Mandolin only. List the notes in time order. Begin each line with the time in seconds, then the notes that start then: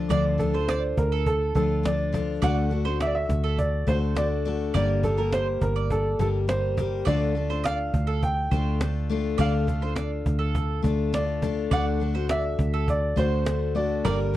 0.10 D5
0.54 C5
0.69 D5
1.12 A4
2.42 D5
2.85 C5
3.00 D5
3.44 A4
3.88 C5
4.74 D5
5.18 A#4
5.33 C5
5.76 D5
7.05 D5
7.50 C5
7.64 D5
8.07 A4
8.51 C5
9.38 D5
9.82 C5
9.96 D5
10.39 A4
11.71 D5
12.15 C5
12.30 D5
12.74 A4
13.17 C5
14.05 D5